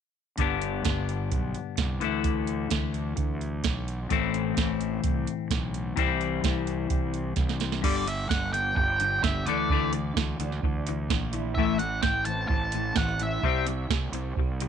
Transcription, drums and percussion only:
0.38 kick, closed hi-hat
0.62 closed hi-hat
0.85 kick, snare, closed hi-hat
1.09 closed hi-hat
1.31 kick, closed hi-hat
1.54 closed hi-hat
1.77 kick, snare, closed hi-hat
2.01 closed hi-hat
2.24 kick, closed hi-hat
2.47 closed hi-hat
2.70 kick, snare, closed hi-hat
2.94 closed hi-hat
3.17 kick, closed hi-hat
3.41 closed hi-hat
3.64 kick, snare, closed hi-hat
3.88 closed hi-hat
4.10 kick, closed hi-hat
4.34 closed hi-hat
4.57 kick, snare, closed hi-hat
4.81 closed hi-hat
5.04 kick, closed hi-hat
5.27 closed hi-hat
5.50 kick, snare, closed hi-hat
5.74 closed hi-hat
5.97 kick, closed hi-hat
6.21 closed hi-hat
6.43 kick, snare, closed hi-hat
6.67 closed hi-hat
6.90 kick, closed hi-hat
7.14 closed hi-hat
7.36 kick, snare, closed hi-hat
7.49 snare
7.60 snare, closed hi-hat
7.72 snare
7.83 kick, crash
8.07 closed hi-hat
8.30 kick, snare
8.54 closed hi-hat
8.77 kick
9.00 closed hi-hat
9.23 kick, snare
9.47 closed hi-hat
9.70 kick
9.93 closed hi-hat
10.16 kick, snare
10.40 closed hi-hat
10.52 snare
10.63 kick
10.87 closed hi-hat
11.10 kick, snare
11.33 closed hi-hat
11.56 kick
11.79 closed hi-hat
12.03 kick, snare
12.25 closed hi-hat
12.49 kick
12.72 closed hi-hat
12.96 kick, snare
13.08 snare
13.20 closed hi-hat
13.43 kick
13.67 closed hi-hat
13.90 kick, snare
14.13 closed hi-hat
14.37 kick
14.60 closed hi-hat

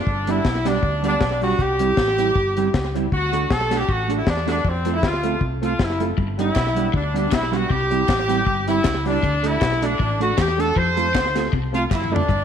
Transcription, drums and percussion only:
0.07 kick
0.27 closed hi-hat
0.45 kick, snare
0.65 snare, closed hi-hat
0.83 kick
1.04 closed hi-hat
1.21 kick, snare
1.42 open hi-hat
1.59 kick, hi-hat pedal
1.79 closed hi-hat
1.97 kick, snare
2.18 closed hi-hat
2.36 kick
2.57 closed hi-hat
2.74 kick, snare
2.96 closed hi-hat
3.12 kick
3.33 closed hi-hat
3.50 kick, snare
3.71 snare, closed hi-hat
3.89 kick
4.10 closed hi-hat
4.27 kick, snare
4.47 snare, closed hi-hat
4.65 kick
4.85 closed hi-hat
5.03 kick, snare
5.23 closed hi-hat
5.41 kick
5.63 closed hi-hat
5.79 kick, snare
6.00 closed hi-hat
6.18 kick
6.39 closed hi-hat
6.56 kick, snare, clap
6.76 closed hi-hat
6.94 kick
7.16 closed hi-hat
7.32 kick, snare, clap
7.53 closed hi-hat
7.70 kick
7.91 closed hi-hat
8.09 kick, snare, clap
8.29 closed hi-hat
8.47 kick
8.68 closed hi-hat
8.84 kick, snare, clap
9.06 open hi-hat
9.23 kick, hi-hat pedal
9.44 closed hi-hat
9.62 kick, snare, clap
9.82 closed hi-hat
10.00 kick
10.21 closed hi-hat
10.38 kick, snare, clap
10.60 closed hi-hat
10.76 kick
10.97 closed hi-hat
11.15 kick, snare, clap
11.35 snare, closed hi-hat
11.53 kick
11.74 closed hi-hat
11.91 kick, snare, clap
12.04 mid tom
12.16 floor tom
12.29 kick, hi-hat pedal

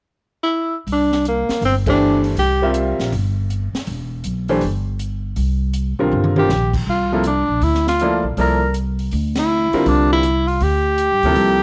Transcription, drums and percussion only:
0.87 open hi-hat
1.12 snare
1.25 closed hi-hat
1.49 snare, open hi-hat
1.62 open hi-hat
1.86 kick, ride
2.24 open hi-hat
2.37 open hi-hat
2.74 closed hi-hat
2.99 snare, open hi-hat
3.13 open hi-hat
3.50 closed hi-hat
3.75 snare, open hi-hat
3.87 open hi-hat
4.24 closed hi-hat
4.48 open hi-hat
4.61 open hi-hat
4.99 closed hi-hat
5.36 open hi-hat
5.73 closed hi-hat
6.12 mid tom
6.24 high tom
6.36 high tom
6.49 snare
6.74 kick, crash
7.24 closed hi-hat
7.62 open hi-hat
7.74 snare
7.87 snare
7.99 closed hi-hat
8.37 open hi-hat
8.74 closed hi-hat
8.99 open hi-hat
9.11 open hi-hat
9.36 snare, ride
9.73 open hi-hat
9.86 open hi-hat
10.23 closed hi-hat
10.48 open hi-hat
10.61 open hi-hat
10.98 closed hi-hat
11.23 open hi-hat
11.36 open hi-hat

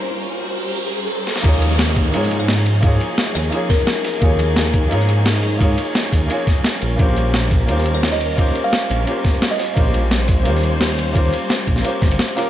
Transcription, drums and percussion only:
1.27 snare
1.36 snare
1.44 kick, closed hi-hat, crash, ride
1.62 closed hi-hat, ride
1.79 snare, closed hi-hat, ride
1.88 closed hi-hat
1.96 kick, closed hi-hat, ride
2.14 closed hi-hat, ride
2.23 snare
2.31 closed hi-hat, ride
2.48 snare, closed hi-hat, open hi-hat
2.58 ride
2.66 closed hi-hat, ride
2.82 kick, closed hi-hat, ride
3.00 closed hi-hat, ride
3.18 snare, closed hi-hat, ride
3.27 closed hi-hat
3.35 snare, closed hi-hat, ride
3.52 closed hi-hat, ride
3.70 kick, snare, closed hi-hat, ride
3.87 snare, closed hi-hat, ride
4.04 snare, closed hi-hat, ride
4.22 kick, closed hi-hat, ride
4.39 closed hi-hat, ride
4.56 snare, closed hi-hat, ride
4.65 closed hi-hat
4.73 kick, closed hi-hat, ride
4.91 closed hi-hat, ride
5.00 snare
5.09 closed hi-hat, ride
5.26 snare, closed hi-hat, open hi-hat
5.35 ride
5.43 closed hi-hat, ride
5.61 kick, closed hi-hat, ride
5.78 closed hi-hat, ride
5.95 snare, closed hi-hat, ride
6.04 closed hi-hat
6.13 kick, snare, closed hi-hat, ride
6.30 closed hi-hat, ride
6.47 kick, snare, closed hi-hat, ride
6.64 snare, closed hi-hat, ride
6.73 closed hi-hat
6.81 closed hi-hat, ride
6.99 kick, closed hi-hat, ride
7.17 closed hi-hat, ride
7.34 snare, closed hi-hat, ride
7.43 closed hi-hat
7.51 kick, snare, closed hi-hat, ride
7.68 closed hi-hat, ride
7.78 snare
7.86 closed hi-hat, ride
8.03 snare, closed hi-hat, open hi-hat
8.13 ride
8.21 closed hi-hat, ride
8.38 kick, closed hi-hat, ride
8.55 closed hi-hat, ride
8.73 snare, closed hi-hat, ride
8.82 closed hi-hat
8.90 closed hi-hat, ride
9.07 closed hi-hat, ride
9.24 kick, snare, closed hi-hat, ride
9.42 snare, closed hi-hat, ride
9.59 snare, closed hi-hat, ride
9.77 kick, closed hi-hat, ride
9.94 closed hi-hat, ride
10.11 snare, closed hi-hat, ride
10.20 closed hi-hat
10.28 kick, snare, closed hi-hat, ride
10.45 closed hi-hat, ride
10.55 snare
10.63 closed hi-hat, ride
10.81 snare, closed hi-hat, open hi-hat
10.89 ride
10.98 closed hi-hat, ride
11.15 kick, closed hi-hat, ride
11.33 closed hi-hat, ride
11.50 snare, closed hi-hat, ride
11.59 closed hi-hat
11.67 kick, closed hi-hat, ride
11.76 snare
11.84 closed hi-hat, ride
12.02 kick, snare, closed hi-hat, ride
12.11 closed hi-hat, ride
12.19 snare, closed hi-hat
12.28 ride
12.37 snare, closed hi-hat, ride

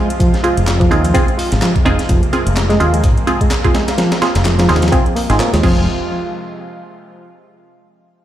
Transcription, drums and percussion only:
0.10 closed hi-hat
0.20 kick, closed hi-hat
0.34 snare, closed hi-hat
0.44 closed hi-hat
0.57 closed hi-hat
0.67 snare, clap, closed hi-hat
0.81 kick, closed hi-hat
0.91 closed hi-hat
1.04 closed hi-hat
1.15 kick, closed hi-hat
1.28 closed hi-hat
1.39 open hi-hat
1.52 snare, closed hi-hat
1.62 snare, clap, closed hi-hat
1.76 kick, closed hi-hat
1.86 closed hi-hat
1.99 snare, closed hi-hat
2.09 kick, closed hi-hat
2.23 closed hi-hat
2.33 closed hi-hat
2.47 closed hi-hat
2.57 snare, clap, closed hi-hat
2.70 snare, closed hi-hat
2.80 closed hi-hat
2.94 closed hi-hat
3.04 kick, closed hi-hat
3.18 closed hi-hat
3.27 closed hi-hat
3.41 kick, closed hi-hat
3.51 snare, clap, closed hi-hat
3.65 kick, closed hi-hat
3.75 snare, closed hi-hat
3.88 snare, closed hi-hat
3.98 snare, closed hi-hat
4.12 snare, closed hi-hat
4.22 snare, closed hi-hat
4.35 snare, closed hi-hat
4.45 snare, clap, closed hi-hat
4.59 snare, closed hi-hat
4.69 snare, closed hi-hat
4.76 snare, closed hi-hat
4.82 snare, closed hi-hat
4.88 snare, closed hi-hat
4.92 kick, closed hi-hat
5.06 closed hi-hat
5.16 open hi-hat
5.30 snare, closed hi-hat
5.40 snare, clap, closed hi-hat
5.54 snare, closed hi-hat
5.63 kick, crash

